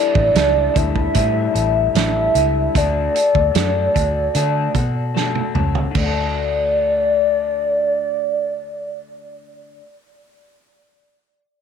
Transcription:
Already playing: G3 D4 E4 A4 D5
0.15 A1, kick
0.34 C#2 G3 D4 E4 A4, snare, closed hi-hat
0.74 D2 G3 D4 E4 A4 E5, kick, closed hi-hat
0.96 kick
1.14 A2 D3 G3 D4 E4 A4, kick, closed hi-hat
1.54 A1 G3 D4 E4 A4, closed hi-hat
1.94 A1 G3 D4 E4 A4 E5, snare, closed hi-hat
2.34 C#2 G3 D4 E4 A4, closed hi-hat
2.75 D2 D3 A3 F#4 A4 D5, kick, closed hi-hat
3.14 F#4 A4, closed hi-hat
3.35 D2, kick
3.55 F#2 A3 F#4 A4, snare, closed hi-hat
3.94 D2 F#4 A4, kick, closed hi-hat
4.35 D3 A3 F#4 A4, closed hi-hat
4.74 B2 F#4 A4, kick, closed hi-hat
5.15 A3 F#4 A4, snare
5.35 high tom
5.55 C#2 C#4 F#4 A4, mid tom
5.75 floor tom
5.91 D2 D3, crash
5.95 A3 D5, kick
6.03 F#4 A4

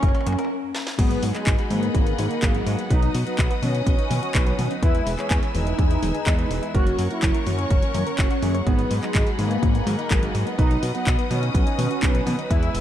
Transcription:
Already playing: F#3 A#3 C#4 A#4 C#5 F#5 C#6
0.03 F#1 F#3, kick, closed hi-hat, mid tom
0.09 mid tom
0.15 C#4, closed hi-hat, mid tom
0.21 mid tom
0.27 F#2 A#3, closed hi-hat, mid tom
0.33 mid tom
0.39 A#4, closed hi-hat, mid tom
0.45 mid tom
0.75 snare
0.87 snare
0.99 G#1 F#3 B3 D#4 G#4 D#5 F#5 B5, kick, closed hi-hat, crash
1.11 B3, closed hi-hat
1.23 G#2 F#3, open hi-hat
1.35 F#3 G#3 D#4 G#4, clap, closed hi-hat
1.46 G#1 F#3, kick, clap, closed hi-hat
1.59 F#4, closed hi-hat
1.71 G#2 F#3 A#3, open hi-hat, high tom
1.83 B3, closed hi-hat
1.95 G#1 F#3, kick, closed hi-hat
2.07 B3, closed hi-hat
2.18 G#2 F#3, open hi-hat, high tom
2.31 D#4, closed hi-hat
2.42 G#1 F#3 G#3 D#4 G#4, kick, clap, closed hi-hat
2.55 F#4, closed hi-hat
2.67 G#2 F#3, open hi-hat
2.79 B3, closed hi-hat
2.90 B1 F#3 B3 D#4 B4 D#5 D#6, kick, closed hi-hat
3.02 D#4, closed hi-hat
3.15 B2 F#3, open hi-hat
3.27 F#3 B3 D#4 F#4 B4, closed hi-hat
3.38 B1 F#3, kick, clap, closed hi-hat
3.51 B4, closed hi-hat
3.62 B2 F#3 C#4, open hi-hat, high tom
3.75 D#4, closed hi-hat
3.87 B1 F#3, kick, closed hi-hat
3.98 D#4, closed hi-hat
4.10 B2 F#3, open hi-hat, high tom
4.22 F#4, closed hi-hat
4.34 B1 F#3 B3 D#4 B4, kick, clap, closed hi-hat
4.47 B4, closed hi-hat
4.58 B2 F#3, open hi-hat, high tom
4.71 D#4, closed hi-hat
4.83 E2 G#3 B3 E4 B4 G#5 E6, kick, closed hi-hat
4.95 E4, closed hi-hat
5.07 E1 G#3, open hi-hat
5.18 E3 G#3 B3 C#4 G#4 B4, clap, closed hi-hat
5.30 E2 G#3, kick, clap, closed hi-hat
5.43 B4, closed hi-hat
5.55 E1 G#3 D#4, open hi-hat, high tom
5.66 E4, closed hi-hat
5.79 E2 G#3, kick, closed hi-hat
5.90 E4, closed hi-hat
6.03 E1 G#3, open hi-hat, high tom
6.15 G#4, closed hi-hat
6.27 E2 E3 G#3 B3 B4, kick, clap, closed hi-hat
6.39 B4, closed hi-hat
6.51 E1 G#3, open hi-hat
6.63 E4, closed hi-hat
6.75 F#1 F#3 A#3 C#4 F#4 A#4 C#5 F#5 C#6, kick, closed hi-hat
6.87 C#4, closed hi-hat
6.99 F#2 F#3, open hi-hat
7.11 F#3 A#3 C#4 E4 F#4 A#4, closed hi-hat
7.22 F#1 F#3, kick, clap, closed hi-hat
7.34 A#4, closed hi-hat
7.47 F#2 F#3 C#4, open hi-hat, high tom
7.59 C#4, closed hi-hat
7.70 F#1 F#3, kick, closed hi-hat
7.83 C#4, closed hi-hat
7.94 F#2 A#3, open hi-hat, high tom
8.07 A#4, closed hi-hat
8.19 F#1 F#4, kick, clap, closed hi-hat
8.31 F#4, closed hi-hat
8.43 F#2 F#3 A#3 C#4 G#4, open hi-hat, high tom
8.55 C#5, closed hi-hat
8.67 G#1 F#3 B3 D#4 G#4 D#5 B5, kick, closed hi-hat
8.79 B3, closed hi-hat
8.91 G#2 F#3, open hi-hat
9.03 F#3 G#3 D#4 G#4, clap, closed hi-hat
9.15 G#1 F#3, kick, clap, closed hi-hat
9.27 F#4, closed hi-hat
9.39 G#2 F#3 A#3, open hi-hat, high tom
9.51 B3, closed hi-hat
9.63 G#1 F#3, kick, closed hi-hat
9.75 B3, closed hi-hat
9.87 G#2 F#3, open hi-hat, high tom
9.99 D#4, closed hi-hat
10.11 G#1 F#3 G#3 D#4 G#4, kick, clap, closed hi-hat
10.23 F#4, closed hi-hat
10.35 G#2 F#3, open hi-hat
10.47 B3, closed hi-hat
10.58 B1 F#3 B3 D#4 B4 D#6, kick, closed hi-hat
10.71 D#4, closed hi-hat
10.83 B2 F#3, open hi-hat
10.94 F#3 B3 D#4 F#4 B4, closed hi-hat
11.06 B1 F#3, kick, clap, closed hi-hat
11.18 B4, closed hi-hat
11.30 B2 F#3 C#4, open hi-hat, high tom
11.42 D#4, closed hi-hat
11.54 B1 F#3, kick, closed hi-hat
11.66 D#4, closed hi-hat
11.78 B2 F#3, open hi-hat, high tom
11.90 F#4, closed hi-hat
12.02 B1 F#3 B3 D#4 B4, kick, clap, closed hi-hat
12.14 B4, closed hi-hat
12.26 B2 F#3, open hi-hat, high tom
12.38 D#4, closed hi-hat
12.50 E2 G#3 B3 E4 B4 G#5 E6, kick, closed hi-hat
12.62 E4, closed hi-hat
12.74 E1 G#3, open hi-hat

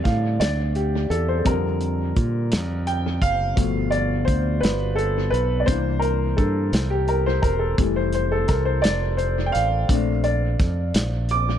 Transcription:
Already playing: D3 G3 A3 D5
0.04 A2 F5, kick, snare, closed hi-hat
0.40 D2 D5, snare, closed hi-hat
0.75 G4, closed hi-hat
1.10 E2 A4, closed hi-hat
1.28 C5
1.38 A4
1.45 F2 D3 G3 C4 A#4, kick, closed hi-hat
1.81 closed hi-hat
2.16 A#2, kick, closed hi-hat
2.52 F2, snare, closed hi-hat
2.87 G5, closed hi-hat
3.22 F#1 F5, kick, closed hi-hat
3.56 G1 B2 F3 A3, kick, closed hi-hat
3.91 D5, closed hi-hat
4.25 D2 C5, kick, closed hi-hat
4.61 G1 B4, closed hi-hat
4.65 snare
4.96 A4, closed hi-hat
5.30 B1 B4, closed hi-hat
5.60 D5
5.66 C2 E3 A#3 D4 C5, kick, closed hi-hat
6.00 A#4, closed hi-hat
6.37 G2 A4, kick, closed hi-hat
6.73 C2, snare, closed hi-hat
6.90 G4
7.08 A#4, closed hi-hat
7.26 C5
7.42 E1 A#4, kick, closed hi-hat
7.59 A4
7.78 F1 E3 G3 A3, kick, closed hi-hat
7.96 C5
8.13 C5, closed hi-hat
8.32 A4
8.48 C2 A#4, kick, snare, closed hi-hat
8.65 C5
8.82 F1 D5, snare, closed hi-hat
9.17 C5, closed hi-hat
9.46 G5
9.52 A1 F5, closed hi-hat
9.88 A#1 A3 C4 D4, kick, closed hi-hat
10.24 D5, closed hi-hat
10.59 F2, kick, snare, closed hi-hat
10.94 A#1, snare, closed hi-hat
11.29 D6, closed hi-hat

